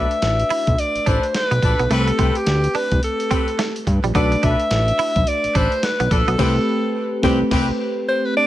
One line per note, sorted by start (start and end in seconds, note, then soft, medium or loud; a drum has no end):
0.00 1.86 A3 medium
0.00 0.11 D4 medium
0.00 1.87 D4 medium
0.00 1.87 F#4 medium
0.00 0.11 A4 medium
0.00 0.11 B4 medium
0.00 1.87 B4 medium
0.00 0.81 E5 loud
0.11 closed hi-hat soft
0.22 0.44 A1 medium
0.22 snare loud
0.22 closed hi-hat medium
0.40 closed hi-hat soft
0.50 0.63 E4 medium
0.50 open hi-hat medium
0.67 0.76 B1 loud
0.67 kick medium
0.67 closed hi-hat medium
0.78 1.09 D5 loud
0.78 closed hi-hat medium
0.95 1.00 A1 soft
0.95 closed hi-hat soft
1.06 1.19 A1 medium
1.06 1.23 D4 medium
1.06 1.19 D4 medium
1.06 1.23 A4 medium
1.06 1.24 B4 medium
1.06 1.35 C5 medium
1.06 kick loud
1.06 closed hi-hat medium
1.23 closed hi-hat soft
1.34 1.93 B4 medium
1.34 snare loud
1.34 closed hi-hat medium
1.51 1.60 B1 medium
1.51 1.60 B3 medium
1.51 closed hi-hat medium
1.62 1.75 A#1 medium
1.62 1.79 D4 medium
1.62 1.80 A4 medium
1.62 1.80 B4 medium
1.62 muted clean electric guitar stroke soft
1.62 kick medium
1.62 closed hi-hat medium
1.79 1.88 B1 medium
1.79 1.88 B3 medium
1.79 closed hi-hat soft
1.90 2.12 C2 loud
1.90 4.10 A3 medium
1.90 2.03 A3 medium
1.90 2.07 C4 medium
1.90 4.11 C4 medium
1.90 2.08 G4 medium
1.90 4.11 G4 medium
1.90 2.38 A4 medium
1.90 2.08 B4 loud
1.90 4.12 B4 medium
1.90 closed hi-hat medium
2.08 muted clean electric guitar stroke soft
2.08 closed hi-hat soft
2.18 2.32 C2 medium
2.18 2.35 C4 medium
2.18 2.31 C4 medium
2.18 2.36 G4 medium
2.18 2.36 B4 medium
2.18 kick medium
2.18 closed hi-hat medium
2.35 2.77 G4 loud
2.35 closed hi-hat medium
2.46 2.68 D2 medium
2.46 snare loud
2.46 closed hi-hat medium
2.64 closed hi-hat soft
2.75 2.87 D4 medium
2.75 3.03 B4 medium
2.75 open hi-hat medium
2.91 3.00 C2 medium
2.91 kick medium
2.91 closed hi-hat medium
3.03 3.84 A4 medium
3.03 closed hi-hat medium
3.20 closed hi-hat soft
3.30 3.48 C4 medium
3.30 3.43 C4 medium
3.30 3.48 G4 medium
3.30 3.48 B4 medium
3.30 kick medium
3.30 closed hi-hat medium
3.48 closed hi-hat soft
3.59 3.71 A3 medium
3.59 snare loud
3.59 closed hi-hat medium
3.76 closed hi-hat medium
3.87 4.00 G2 medium
3.87 muted clean electric guitar stroke soft
3.87 kick medium
3.87 closed hi-hat medium
4.04 4.12 A#1 medium
4.04 4.12 G3 medium
4.04 closed hi-hat soft
4.14 4.36 B1 loud
4.14 6.35 A3 medium
4.14 4.28 B3 medium
4.14 4.32 D4 medium
4.14 6.35 D4 medium
4.14 6.36 F#4 medium
4.14 4.32 A4 medium
4.14 4.32 B4 loud
4.14 6.36 B4 medium
4.14 4.46 D5 loud
4.14 kick loud
4.14 closed hi-hat medium
4.32 muted clean electric guitar stroke soft
4.32 closed hi-hat soft
4.43 4.56 B1 loud
4.43 4.60 D4 medium
4.43 4.56 D4 medium
4.43 4.60 A4 medium
4.43 4.60 B4 medium
4.43 5.30 E5 loud
4.43 kick medium
4.43 closed hi-hat medium
4.60 closed hi-hat soft
4.71 4.92 A1 medium
4.71 snare loud
4.71 closed hi-hat medium
4.88 closed hi-hat medium
4.99 5.12 E4 medium
4.99 open hi-hat medium
5.16 5.24 B1 loud
5.16 kick medium
5.16 closed hi-hat medium
5.27 5.58 D5 loud
5.27 closed hi-hat medium
5.44 5.48 A1 soft
5.44 closed hi-hat soft
5.55 5.68 A1 medium
5.55 5.72 D4 medium
5.55 5.68 D4 medium
5.55 5.72 A4 medium
5.55 5.72 B4 medium
5.55 5.86 C5 loud
5.55 kick loud
5.55 closed hi-hat medium
5.72 closed hi-hat soft
5.83 6.14 B4 medium
5.83 snare loud
5.83 closed hi-hat medium
6.00 6.09 B1 medium
6.00 6.08 B3 medium
6.00 closed hi-hat medium
6.11 6.24 A#1 medium
6.11 6.28 D4 medium
6.11 6.28 A4 medium
6.11 7.24 A4 medium
6.11 6.28 B4 medium
6.11 muted clean electric guitar stroke soft
6.11 kick loud
6.11 closed hi-hat medium
6.28 6.36 B1 medium
6.28 6.36 B3 medium
6.28 closed hi-hat soft
6.38 6.59 C2 loud
6.38 6.59 A3 loud
6.38 6.54 C4 loud
6.38 6.59 C4 loud
6.38 6.54 G4 loud
6.38 6.60 G4 loud
6.38 6.54 B4 loud
6.38 6.60 B4 loud
6.38 kick loud
6.38 snare loud
6.38 crash medium
7.22 7.43 C2 loud
7.22 7.43 A3 loud
7.22 7.38 C4 loud
7.22 7.43 C4 loud
7.22 7.38 G4 loud
7.22 7.44 G4 medium
7.22 7.38 B4 loud
7.22 7.44 B4 loud
7.22 kick loud
7.22 snare loud
7.51 7.71 C2 loud
7.51 7.66 C4 loud
7.51 7.66 G4 loud
7.51 7.67 B4 loud
7.51 kick loud
7.51 snare loud
7.51 crash medium
8.09 8.27 C5 loud
8.25 8.36 B4 loud
8.37 8.47 D5 loud